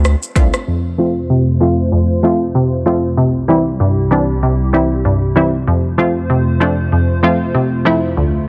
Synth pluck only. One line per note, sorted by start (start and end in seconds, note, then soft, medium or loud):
0.36 0.50 A3 medium
0.36 0.50 C4 medium
0.36 0.50 D4 medium
0.36 0.50 F4 medium
0.67 1.15 F2 medium
0.98 1.12 F3 medium
0.98 1.12 A3 medium
0.98 1.13 C4 medium
0.98 1.13 F4 medium
1.30 1.78 C3 medium
1.60 1.75 F3 medium
1.60 1.75 A3 medium
1.60 1.75 C4 medium
1.60 1.75 F4 loud
1.92 2.40 F2 medium
2.23 2.37 F3 medium
2.23 2.38 A3 medium
2.23 2.38 C4 medium
2.23 2.38 F4 medium
2.55 3.03 C3 medium
2.86 3.00 F3 medium
2.86 3.00 A3 medium
2.86 3.00 C4 medium
2.86 3.01 F4 medium
3.17 3.65 C3 medium
3.48 3.62 E3 medium
3.48 3.63 G3 medium
3.48 3.63 C4 medium
3.48 3.63 E4 medium
3.80 4.28 G2 medium
4.11 4.25 E3 medium
4.11 4.25 G3 medium
4.11 4.25 C4 medium
4.11 4.26 D4 medium
4.43 4.90 C3 medium
4.73 4.87 E3 medium
4.73 4.88 G3 medium
4.73 4.88 C4 medium
4.73 4.88 E4 medium
5.05 5.53 G2 medium
5.36 5.50 E3 medium
5.36 5.50 G3 medium
5.36 5.50 C4 medium
5.36 5.51 E4 medium
5.67 6.15 F2 medium
5.98 6.12 F3 medium
5.98 6.12 A3 medium
5.98 6.13 C4 medium
5.98 6.13 F4 medium
6.30 6.78 C3 medium
6.60 6.75 F3 medium
6.60 6.75 A3 medium
6.60 6.75 C4 medium
6.60 6.75 D4 medium
6.92 7.40 F2 medium
7.23 7.37 F3 medium
7.23 7.37 A3 medium
7.23 7.38 C4 medium
7.23 7.38 F4 medium
7.55 8.03 C3 medium
7.85 8.00 F3 medium
7.85 8.00 A3 medium
7.85 8.00 C4 medium
7.85 8.00 E4 medium
8.17 8.48 D2 medium